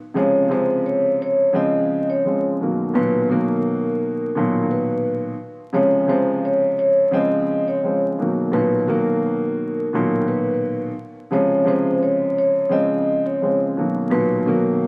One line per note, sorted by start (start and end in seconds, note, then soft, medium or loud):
0.14 0.49 C3 loud
0.14 0.47 C#3 loud
0.14 0.48 F3 medium
0.14 0.49 G#3 medium
0.14 0.48 C#5 medium
0.49 1.48 C3 loud
0.49 1.47 C#3 medium
0.49 1.47 F3 medium
0.49 1.48 G#3 medium
0.49 0.83 C5 medium
0.86 1.18 C#5 medium
1.22 1.53 C#5 medium
1.53 2.19 C#3 loud
1.53 2.19 F3 medium
1.53 2.20 G#3 medium
1.53 2.20 C4 loud
1.53 2.07 D#5 loud
2.10 2.41 C#5 medium
2.25 2.58 C#3 medium
2.25 2.58 F3 medium
2.25 2.58 G#3 medium
2.25 2.59 C4 medium
2.61 2.92 B2 medium
2.61 2.93 D#3 medium
2.61 2.93 F#3 medium
2.61 2.94 A#3 medium
2.94 3.28 A#2 loud
2.94 3.27 B2 medium
2.94 3.27 D#3 medium
2.94 3.28 F#3 medium
2.94 3.27 B4 loud
3.30 4.27 B2 loud
3.30 4.27 D#3 medium
3.30 4.28 F#3 medium
3.30 4.28 A#3 loud
3.30 4.66 A#4 medium
4.35 5.33 A#2 loud
4.35 5.32 B2 medium
4.35 5.33 D#3 medium
4.35 5.33 F#3 medium
4.71 5.21 B4 medium
5.73 6.07 C3 loud
5.73 6.05 C#3 loud
5.73 6.06 F3 medium
5.73 6.07 G#3 medium
5.73 6.06 C#5 loud
6.07 7.06 C3 loud
6.07 7.05 C#3 medium
6.07 7.06 F3 medium
6.07 7.06 G#3 medium
6.07 6.41 C5 medium
6.45 6.76 C#5 medium
6.79 7.11 C#5 medium
7.11 7.77 C#3 loud
7.11 7.78 F3 medium
7.11 7.78 G#3 medium
7.11 7.78 C4 loud
7.11 7.65 D#5 medium
7.68 7.99 C#5 medium
7.83 8.16 C#3 medium
7.83 8.16 F3 medium
7.83 8.17 G#3 medium
7.83 8.17 C4 medium
8.19 8.50 B2 medium
8.19 8.51 D#3 medium
8.19 8.52 F#3 medium
8.19 8.52 A#3 medium
8.52 8.86 A#2 loud
8.52 8.85 B2 medium
8.52 8.85 D#3 medium
8.52 8.86 F#3 medium
8.52 8.85 B4 loud
8.87 9.85 B2 loud
8.87 9.85 D#3 medium
8.87 9.86 F#3 medium
8.87 9.86 A#3 loud
8.87 10.24 A#4 medium
9.93 10.91 A#2 loud
9.93 10.90 B2 medium
9.93 10.91 D#3 medium
9.93 10.91 F#3 medium
10.28 10.79 B4 medium
11.31 11.65 C3 loud
11.31 11.63 C#3 loud
11.31 11.64 F3 medium
11.31 11.65 G#3 medium
11.31 11.64 C#5 medium
11.65 12.64 C3 loud
11.65 12.63 C#3 medium
11.65 12.64 F3 medium
11.65 12.64 G#3 medium
11.65 11.99 C5 medium
12.03 12.34 C#5 medium
12.38 12.69 C#5 medium
12.69 13.36 C#3 loud
12.69 13.36 F3 medium
12.69 13.36 G#3 medium
12.69 13.37 C4 loud
12.69 13.23 D#5 loud
13.26 13.58 C#5 medium
13.41 13.74 C#3 medium
13.41 13.74 F3 medium
13.41 13.75 G#3 medium
13.41 13.75 C4 medium
13.77 14.09 B2 medium
13.77 14.09 D#3 medium
13.77 14.10 F#3 medium
13.77 14.11 A#3 medium
14.10 14.44 A#2 loud
14.10 14.43 B2 medium
14.10 14.44 D#3 medium
14.10 14.44 F#3 medium
14.10 14.43 B4 loud
14.46 14.87 B2 medium
14.46 14.87 D#3 medium
14.46 14.87 F#3 medium
14.46 14.87 A#3 loud
14.46 14.87 A#4 medium